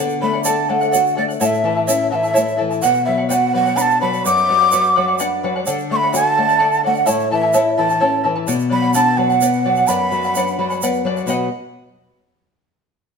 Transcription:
Already playing: D3 A4 D5 F#5
0.09 shaker
0.21 A3 A4 D5 F#5 B5
0.33 D5 F#5
0.44 A4 D5 F#5 A5, shaker
0.69 A3 A4 D5 F#5
0.81 D5 F#5, shaker
0.91 F#4 A4 D5 F#5, shaker
1.06 shaker
1.15 A3 A4 D5 F#5
1.28 D5 F#5, shaker
1.40 A2 E4 A4 C#5 E5 F#5 A5, shaker
1.45 E5
1.53 shaker
1.64 E3 E4 A4 E5 A5
1.77 E4 A4 A5
1.86 C#4 E4 A4 C#5 E5 A5, shaker
2.11 E3 E4 A4 E5 F#5 A5
2.15 E5
2.23 E4 A4 A5, shaker
2.34 A3 E4 A4 C#5 E5 A5, shaker
2.47 shaker
2.57 E3 E4 A4 E5 A5
2.71 E4 A4 A5, shaker
2.82 B2 B4 D5 F#5, shaker
2.94 shaker
3.05 F#3 B4 D5 E5 F#5
3.11 E5
3.18 D5 F#5
3.29 F#4 B4 D5 F#5 G5, shaker
3.34 F#5
3.53 F#3 B4 D5 F#5
3.65 D5 F#5, shaker
3.76 D4 B4 D5 F#5 A5 B5, shaker
3.81 A5
3.90 shaker
4.01 F#3 B4 D5 F#5 B5
4.12 D5 F#5, shaker
4.25 F#2 B4 D5 F#5 D6, shaker
4.37 shaker
4.48 F#3 B4 D5 F#5
4.60 D5 F#5
4.71 F#4 B4 D5 F#5, shaker
4.84 shaker
4.96 F#3 B4 D5 F#5
5.08 D5 F#5
5.19 D4 B4 D5 F#5, shaker
5.43 F#3 B4 D5 F#5
5.56 D5 F#5
5.66 D3 A4 D5 F#5, shaker
5.79 shaker
5.89 A3 A4 D5 F#5 C#6
5.96 B5
6.02 D5 F#5
6.12 F#4 A4 D5 F#5 A5, shaker
6.36 A3 A4 D5 F#5
6.48 D5 F#5, shaker
6.59 D4 A4 D5 F#5
6.72 shaker
6.83 A3 A4 D5 F#5
6.94 D5 F#5, shaker
7.06 A2 E4 A4 C#5 E5 A5, shaker
7.31 E3 E4 A4 E5 A5
7.42 E4 A4 A5
7.53 E4 A4 C#5 E5 A5, shaker
7.77 E3 E4 A4 E5 A5 B5
7.89 E4 A4 A5, shaker
8.00 C#4 E4 A4 C#5 E5 A5
8.24 E3 E4 A4 E5 A5
8.36 E4 A4 A5
8.47 B2 B4 D5 F#5, shaker
8.59 shaker
8.69 F#3 B4 D5 F#5 B5
8.75 B5
8.82 D5 F#5
8.94 D4 B4 D5 F#5 A5 B5, shaker
9.02 A5
9.17 F#3 B4 D5 F#5
9.22 F#5
9.30 D5 F#5, shaker
9.41 B3 B4 D5 F#5, shaker
9.53 shaker
9.64 F#3 B4 D5 F#5
9.76 D5 F#5, shaker
9.87 F#2 B4 D5 F#5 B5, shaker
10.11 F#3 B4 D5 F#5, shaker
10.23 D5 F#5, shaker
10.35 D4 B4 D5 F#5, shaker
10.47 shaker
10.59 F#3 B4 D5 F#5
10.70 D5 F#5, shaker
10.82 B3 B4 D5 F#5, shaker
11.05 F#3 B4 D5 F#5
11.17 D5 F#5, shaker
11.26 B2 F#3 B3 F#4 B4 D#5 F#5 B5, shaker

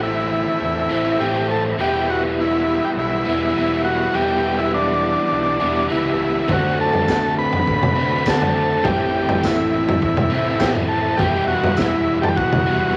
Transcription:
Already playing: A1 A2 E3 A3 C4 E4 A4 E5 G5 A5
0.03 E4
0.61 E2
0.89 A1 A2 E3 A3 C4 E4
1.20 A1 A2 E3 A3 C4 E4 G4
1.51 A4
1.78 E1 E3 G3 B3 E4 G4 F#5 B5
2.10 F#4
2.41 E4
2.85 G4
2.97 B1 E4
3.25 E1 E3 G3 B3 E4
3.55 E1 E3 G3 B3 E4
3.85 F#4
4.14 E1 E3 G3 B3 E4 G4 A5
4.59 E4
4.74 D4
5.32 B1
5.60 E1 E3 G3 B3 E4
5.89 C#2 E3 G3 B3 E4
6.48 D2 D3 A3 C4 F#4 A4 D5 A5, kick, floor tom
6.53 F#4
6.81 A4
6.93 floor tom
7.08 kick, snare, tambourine
7.39 B4
7.53 floor tom
7.67 A1, kick
7.83 floor tom, mid tom
7.95 D2 D3 A3 C4 F#4
8.26 D2 D3 A3 C4 F#4 A4, kick, snare, tambourine
8.42 floor tom
8.83 A1 A2 E3 A3 C4 E4 G4 E5 G5, kick, floor tom
9.29 floor tom
9.43 E4, kick, snare, tambourine
9.89 floor tom
10.02 E2, kick
10.17 floor tom, mid tom
10.30 A1 A2 E3 A3 C4 E4
10.60 A1 A2 E3 A3 C4 E4 G4, kick, snare, tambourine
10.75 floor tom
10.89 A4
11.17 E1 E3 G3 B3 E4 G4 E5 F#5 B5, kick, floor tom
11.48 F#4
11.64 floor tom
11.77 E4, kick, snare, tambourine
12.22 G4 A4, floor tom
12.28 G4
12.36 B1 F#4, kick
12.53 floor tom, mid tom
12.66 E1 E3 G3 B3 E4

